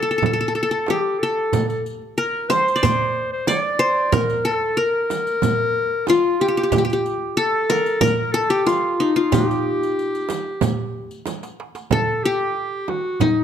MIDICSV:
0, 0, Header, 1, 6, 480
1, 0, Start_track
1, 0, Tempo, 649351
1, 1132, Time_signature, 4, 2, 24, 8
1, 9934, End_track
2, 0, Start_track
2, 0, Title_t, "Clarinet"
2, 0, Program_c, 0, 71
2, 0, Note_on_c, 0, 69, 78
2, 402, Note_off_c, 0, 69, 0
2, 406, Note_on_c, 0, 69, 65
2, 656, Note_on_c, 0, 67, 62
2, 667, Note_off_c, 0, 69, 0
2, 883, Note_on_c, 0, 69, 70
2, 894, Note_off_c, 0, 67, 0
2, 1241, Note_off_c, 0, 69, 0
2, 1245, Note_on_c, 0, 69, 52
2, 1360, Note_off_c, 0, 69, 0
2, 1614, Note_on_c, 0, 70, 80
2, 1844, Note_on_c, 0, 72, 72
2, 1856, Note_off_c, 0, 70, 0
2, 2088, Note_off_c, 0, 72, 0
2, 2101, Note_on_c, 0, 72, 76
2, 2432, Note_off_c, 0, 72, 0
2, 2457, Note_on_c, 0, 72, 71
2, 2567, Note_on_c, 0, 74, 76
2, 2578, Note_off_c, 0, 72, 0
2, 3058, Note_on_c, 0, 70, 78
2, 3069, Note_off_c, 0, 74, 0
2, 3291, Note_on_c, 0, 69, 73
2, 3302, Note_off_c, 0, 70, 0
2, 3540, Note_on_c, 0, 70, 90
2, 3551, Note_off_c, 0, 69, 0
2, 4489, Note_on_c, 0, 65, 72
2, 4500, Note_off_c, 0, 70, 0
2, 4732, Note_on_c, 0, 67, 70
2, 4743, Note_off_c, 0, 65, 0
2, 5211, Note_off_c, 0, 67, 0
2, 5447, Note_on_c, 0, 69, 85
2, 5922, Note_on_c, 0, 70, 87
2, 5933, Note_off_c, 0, 69, 0
2, 6152, Note_on_c, 0, 69, 76
2, 6163, Note_off_c, 0, 70, 0
2, 6279, Note_on_c, 0, 67, 72
2, 6290, Note_off_c, 0, 69, 0
2, 6396, Note_on_c, 0, 65, 69
2, 6407, Note_off_c, 0, 67, 0
2, 6752, Note_off_c, 0, 65, 0
2, 6757, Note_on_c, 0, 65, 67
2, 6895, Note_on_c, 0, 67, 70
2, 6906, Note_off_c, 0, 65, 0
2, 8331, Note_off_c, 0, 67, 0
2, 8813, Note_on_c, 0, 69, 67
2, 9044, Note_on_c, 0, 67, 71
2, 9055, Note_off_c, 0, 69, 0
2, 9527, Note_on_c, 0, 66, 62
2, 9538, Note_off_c, 0, 67, 0
2, 9767, Note_on_c, 0, 63, 61
2, 9779, Note_off_c, 0, 66, 0
2, 9934, Note_off_c, 0, 63, 0
2, 9934, End_track
3, 0, Start_track
3, 0, Title_t, "Qanun"
3, 0, Program_c, 1, 107
3, 0, Note_on_c, 1, 67, 72
3, 18, Note_on_c, 1, 69, 55
3, 77, Note_off_c, 1, 69, 0
3, 80, Note_on_c, 1, 69, 47
3, 130, Note_off_c, 1, 69, 0
3, 133, Note_on_c, 1, 69, 50
3, 188, Note_off_c, 1, 69, 0
3, 191, Note_on_c, 1, 69, 44
3, 244, Note_off_c, 1, 69, 0
3, 247, Note_on_c, 1, 69, 54
3, 297, Note_off_c, 1, 69, 0
3, 300, Note_on_c, 1, 69, 47
3, 352, Note_off_c, 1, 69, 0
3, 355, Note_on_c, 1, 69, 52
3, 378, Note_off_c, 1, 67, 0
3, 404, Note_off_c, 1, 69, 0
3, 407, Note_on_c, 1, 69, 44
3, 461, Note_off_c, 1, 69, 0
3, 464, Note_on_c, 1, 69, 61
3, 522, Note_off_c, 1, 69, 0
3, 525, Note_on_c, 1, 69, 52
3, 666, Note_on_c, 1, 67, 72
3, 906, Note_off_c, 1, 69, 0
3, 909, Note_on_c, 1, 69, 72
3, 1594, Note_off_c, 1, 67, 0
3, 1609, Note_on_c, 1, 70, 76
3, 1653, Note_off_c, 1, 69, 0
3, 1846, Note_on_c, 1, 72, 85
3, 2038, Note_on_c, 1, 74, 64
3, 2088, Note_off_c, 1, 72, 0
3, 2091, Note_on_c, 1, 72, 83
3, 2447, Note_off_c, 1, 70, 0
3, 2567, Note_off_c, 1, 74, 0
3, 2570, Note_on_c, 1, 74, 85
3, 2800, Note_off_c, 1, 72, 0
3, 2803, Note_on_c, 1, 72, 94
3, 3048, Note_on_c, 1, 70, 77
3, 3289, Note_on_c, 1, 69, 77
3, 3298, Note_off_c, 1, 74, 0
3, 3333, Note_off_c, 1, 70, 0
3, 3526, Note_on_c, 1, 70, 78
3, 3570, Note_off_c, 1, 69, 0
3, 3584, Note_off_c, 1, 72, 0
3, 4506, Note_on_c, 1, 65, 79
3, 4518, Note_off_c, 1, 70, 0
3, 4740, Note_on_c, 1, 67, 70
3, 4790, Note_off_c, 1, 67, 0
3, 4793, Note_on_c, 1, 67, 57
3, 4856, Note_off_c, 1, 67, 0
3, 4859, Note_on_c, 1, 67, 58
3, 4901, Note_off_c, 1, 67, 0
3, 4904, Note_on_c, 1, 67, 49
3, 4964, Note_off_c, 1, 67, 0
3, 4967, Note_on_c, 1, 67, 60
3, 5011, Note_off_c, 1, 67, 0
3, 5014, Note_on_c, 1, 67, 49
3, 5059, Note_off_c, 1, 67, 0
3, 5062, Note_on_c, 1, 67, 55
3, 5120, Note_off_c, 1, 67, 0
3, 5123, Note_on_c, 1, 67, 55
3, 5448, Note_on_c, 1, 69, 90
3, 5502, Note_off_c, 1, 65, 0
3, 5689, Note_on_c, 1, 70, 86
3, 5734, Note_off_c, 1, 69, 0
3, 5918, Note_off_c, 1, 70, 0
3, 5921, Note_on_c, 1, 70, 97
3, 6051, Note_off_c, 1, 67, 0
3, 6165, Note_on_c, 1, 69, 91
3, 6209, Note_off_c, 1, 70, 0
3, 6284, Note_on_c, 1, 67, 80
3, 6405, Note_on_c, 1, 65, 79
3, 6653, Note_on_c, 1, 63, 76
3, 6769, Note_off_c, 1, 65, 0
3, 6772, Note_on_c, 1, 65, 77
3, 6889, Note_off_c, 1, 67, 0
3, 6892, Note_on_c, 1, 67, 81
3, 7029, Note_off_c, 1, 69, 0
3, 7722, Note_off_c, 1, 63, 0
3, 7768, Note_off_c, 1, 65, 0
3, 8300, Note_off_c, 1, 67, 0
3, 8815, Note_on_c, 1, 69, 78
3, 9059, Note_on_c, 1, 67, 73
3, 9680, Note_off_c, 1, 69, 0
3, 9765, Note_on_c, 1, 63, 70
3, 9934, Note_off_c, 1, 63, 0
3, 9934, Note_off_c, 1, 67, 0
3, 9934, End_track
4, 0, Start_track
4, 0, Title_t, "Darbuka"
4, 44, Note_on_c, 9, 62, 25
4, 118, Note_off_c, 9, 62, 0
4, 164, Note_on_c, 9, 64, 67
4, 238, Note_off_c, 9, 64, 0
4, 406, Note_on_c, 9, 62, 27
4, 480, Note_off_c, 9, 62, 0
4, 523, Note_on_c, 9, 62, 25
4, 597, Note_off_c, 9, 62, 0
4, 639, Note_on_c, 9, 63, 65
4, 713, Note_off_c, 9, 63, 0
4, 768, Note_on_c, 9, 62, 26
4, 842, Note_off_c, 9, 62, 0
4, 887, Note_on_c, 9, 62, 24
4, 961, Note_off_c, 9, 62, 0
4, 1007, Note_on_c, 9, 62, 26
4, 1081, Note_off_c, 9, 62, 0
4, 1128, Note_on_c, 9, 64, 82
4, 1202, Note_off_c, 9, 64, 0
4, 1373, Note_on_c, 9, 62, 26
4, 1447, Note_off_c, 9, 62, 0
4, 1493, Note_on_c, 9, 62, 26
4, 1567, Note_off_c, 9, 62, 0
4, 1857, Note_on_c, 9, 63, 54
4, 1931, Note_off_c, 9, 63, 0
4, 1981, Note_on_c, 9, 62, 24
4, 2055, Note_off_c, 9, 62, 0
4, 2095, Note_on_c, 9, 64, 80
4, 2168, Note_off_c, 9, 64, 0
4, 2463, Note_on_c, 9, 62, 25
4, 2537, Note_off_c, 9, 62, 0
4, 2583, Note_on_c, 9, 63, 69
4, 2657, Note_off_c, 9, 63, 0
4, 2694, Note_on_c, 9, 62, 25
4, 2768, Note_off_c, 9, 62, 0
4, 3051, Note_on_c, 9, 64, 87
4, 3125, Note_off_c, 9, 64, 0
4, 3179, Note_on_c, 9, 62, 23
4, 3252, Note_off_c, 9, 62, 0
4, 3299, Note_on_c, 9, 62, 23
4, 3373, Note_off_c, 9, 62, 0
4, 3412, Note_on_c, 9, 62, 26
4, 3486, Note_off_c, 9, 62, 0
4, 3892, Note_on_c, 9, 62, 23
4, 3966, Note_off_c, 9, 62, 0
4, 4012, Note_on_c, 9, 64, 78
4, 4086, Note_off_c, 9, 64, 0
4, 4374, Note_on_c, 9, 62, 25
4, 4448, Note_off_c, 9, 62, 0
4, 4488, Note_on_c, 9, 63, 64
4, 4562, Note_off_c, 9, 63, 0
4, 4606, Note_on_c, 9, 62, 22
4, 4680, Note_off_c, 9, 62, 0
4, 4966, Note_on_c, 9, 64, 85
4, 5040, Note_off_c, 9, 64, 0
4, 5212, Note_on_c, 9, 62, 22
4, 5286, Note_off_c, 9, 62, 0
4, 5333, Note_on_c, 9, 62, 24
4, 5407, Note_off_c, 9, 62, 0
4, 5693, Note_on_c, 9, 63, 53
4, 5767, Note_off_c, 9, 63, 0
4, 5813, Note_on_c, 9, 62, 25
4, 5887, Note_off_c, 9, 62, 0
4, 5936, Note_on_c, 9, 64, 81
4, 6010, Note_off_c, 9, 64, 0
4, 6298, Note_on_c, 9, 62, 24
4, 6372, Note_off_c, 9, 62, 0
4, 6411, Note_on_c, 9, 63, 56
4, 6485, Note_off_c, 9, 63, 0
4, 6536, Note_on_c, 9, 62, 23
4, 6610, Note_off_c, 9, 62, 0
4, 6897, Note_on_c, 9, 64, 89
4, 6971, Note_off_c, 9, 64, 0
4, 7021, Note_on_c, 9, 62, 23
4, 7095, Note_off_c, 9, 62, 0
4, 7143, Note_on_c, 9, 62, 26
4, 7217, Note_off_c, 9, 62, 0
4, 7259, Note_on_c, 9, 62, 26
4, 7333, Note_off_c, 9, 62, 0
4, 7383, Note_on_c, 9, 62, 25
4, 7457, Note_off_c, 9, 62, 0
4, 7503, Note_on_c, 9, 62, 26
4, 7577, Note_off_c, 9, 62, 0
4, 7617, Note_on_c, 9, 63, 62
4, 7691, Note_off_c, 9, 63, 0
4, 7733, Note_on_c, 9, 62, 23
4, 7806, Note_off_c, 9, 62, 0
4, 7849, Note_on_c, 9, 64, 76
4, 7923, Note_off_c, 9, 64, 0
4, 8213, Note_on_c, 9, 62, 25
4, 8287, Note_off_c, 9, 62, 0
4, 8332, Note_on_c, 9, 63, 57
4, 8406, Note_off_c, 9, 63, 0
4, 8449, Note_on_c, 9, 62, 62
4, 8523, Note_off_c, 9, 62, 0
4, 8574, Note_on_c, 9, 63, 62
4, 8648, Note_off_c, 9, 63, 0
4, 8686, Note_on_c, 9, 62, 80
4, 8760, Note_off_c, 9, 62, 0
4, 8800, Note_on_c, 9, 64, 83
4, 8874, Note_off_c, 9, 64, 0
4, 9523, Note_on_c, 9, 63, 59
4, 9597, Note_off_c, 9, 63, 0
4, 9757, Note_on_c, 9, 64, 77
4, 9831, Note_off_c, 9, 64, 0
4, 9934, End_track
5, 0, Start_track
5, 0, Title_t, "Frame drum"
5, 167, Note_on_c, 9, 64, 72
5, 241, Note_off_c, 9, 64, 0
5, 652, Note_on_c, 9, 64, 62
5, 726, Note_off_c, 9, 64, 0
5, 1132, Note_on_c, 9, 64, 71
5, 1206, Note_off_c, 9, 64, 0
5, 1847, Note_on_c, 9, 64, 68
5, 1921, Note_off_c, 9, 64, 0
5, 2091, Note_on_c, 9, 64, 78
5, 2165, Note_off_c, 9, 64, 0
5, 2568, Note_on_c, 9, 64, 75
5, 2642, Note_off_c, 9, 64, 0
5, 3050, Note_on_c, 9, 64, 84
5, 3124, Note_off_c, 9, 64, 0
5, 3771, Note_on_c, 9, 64, 64
5, 3845, Note_off_c, 9, 64, 0
5, 4007, Note_on_c, 9, 64, 79
5, 4081, Note_off_c, 9, 64, 0
5, 4487, Note_on_c, 9, 64, 67
5, 4560, Note_off_c, 9, 64, 0
5, 4967, Note_on_c, 9, 64, 83
5, 5041, Note_off_c, 9, 64, 0
5, 5689, Note_on_c, 9, 64, 64
5, 5763, Note_off_c, 9, 64, 0
5, 5920, Note_on_c, 9, 64, 83
5, 5994, Note_off_c, 9, 64, 0
5, 6410, Note_on_c, 9, 64, 58
5, 6484, Note_off_c, 9, 64, 0
5, 6889, Note_on_c, 9, 64, 91
5, 6963, Note_off_c, 9, 64, 0
5, 7604, Note_on_c, 9, 64, 63
5, 7678, Note_off_c, 9, 64, 0
5, 7844, Note_on_c, 9, 64, 95
5, 7918, Note_off_c, 9, 64, 0
5, 8320, Note_on_c, 9, 64, 58
5, 8394, Note_off_c, 9, 64, 0
5, 8802, Note_on_c, 9, 64, 93
5, 8876, Note_off_c, 9, 64, 0
5, 9521, Note_on_c, 9, 64, 59
5, 9595, Note_off_c, 9, 64, 0
5, 9761, Note_on_c, 9, 64, 81
5, 9835, Note_off_c, 9, 64, 0
5, 9934, End_track
6, 0, Start_track
6, 0, Title_t, "Riq"
6, 1132, Note_on_c, 9, 54, 54
6, 1206, Note_off_c, 9, 54, 0
6, 1256, Note_on_c, 9, 54, 18
6, 1329, Note_off_c, 9, 54, 0
6, 1376, Note_on_c, 9, 54, 18
6, 1450, Note_off_c, 9, 54, 0
6, 1858, Note_on_c, 9, 54, 46
6, 1932, Note_off_c, 9, 54, 0
6, 1982, Note_on_c, 9, 54, 20
6, 2056, Note_off_c, 9, 54, 0
6, 2104, Note_on_c, 9, 54, 62
6, 2178, Note_off_c, 9, 54, 0
6, 2584, Note_on_c, 9, 54, 47
6, 2658, Note_off_c, 9, 54, 0
6, 3056, Note_on_c, 9, 54, 61
6, 3130, Note_off_c, 9, 54, 0
6, 3176, Note_on_c, 9, 54, 17
6, 3250, Note_off_c, 9, 54, 0
6, 3298, Note_on_c, 9, 54, 18
6, 3372, Note_off_c, 9, 54, 0
6, 3776, Note_on_c, 9, 54, 44
6, 3850, Note_off_c, 9, 54, 0
6, 3894, Note_on_c, 9, 54, 19
6, 3968, Note_off_c, 9, 54, 0
6, 4014, Note_on_c, 9, 54, 60
6, 4088, Note_off_c, 9, 54, 0
6, 4497, Note_on_c, 9, 54, 42
6, 4570, Note_off_c, 9, 54, 0
6, 4972, Note_on_c, 9, 54, 53
6, 5046, Note_off_c, 9, 54, 0
6, 5098, Note_on_c, 9, 54, 18
6, 5172, Note_off_c, 9, 54, 0
6, 5217, Note_on_c, 9, 54, 17
6, 5291, Note_off_c, 9, 54, 0
6, 5691, Note_on_c, 9, 54, 47
6, 5765, Note_off_c, 9, 54, 0
6, 5811, Note_on_c, 9, 54, 19
6, 5885, Note_off_c, 9, 54, 0
6, 5937, Note_on_c, 9, 54, 55
6, 6011, Note_off_c, 9, 54, 0
6, 6421, Note_on_c, 9, 54, 42
6, 6495, Note_off_c, 9, 54, 0
6, 6904, Note_on_c, 9, 54, 57
6, 6978, Note_off_c, 9, 54, 0
6, 7029, Note_on_c, 9, 54, 16
6, 7102, Note_off_c, 9, 54, 0
6, 7269, Note_on_c, 9, 54, 17
6, 7343, Note_off_c, 9, 54, 0
6, 7384, Note_on_c, 9, 54, 18
6, 7458, Note_off_c, 9, 54, 0
6, 7502, Note_on_c, 9, 54, 18
6, 7576, Note_off_c, 9, 54, 0
6, 7612, Note_on_c, 9, 54, 45
6, 7686, Note_off_c, 9, 54, 0
6, 7852, Note_on_c, 9, 54, 51
6, 7926, Note_off_c, 9, 54, 0
6, 8212, Note_on_c, 9, 54, 17
6, 8286, Note_off_c, 9, 54, 0
6, 8327, Note_on_c, 9, 54, 42
6, 8401, Note_off_c, 9, 54, 0
6, 8451, Note_on_c, 9, 54, 20
6, 8525, Note_off_c, 9, 54, 0
6, 8688, Note_on_c, 9, 54, 18
6, 8761, Note_off_c, 9, 54, 0
6, 9934, End_track
0, 0, End_of_file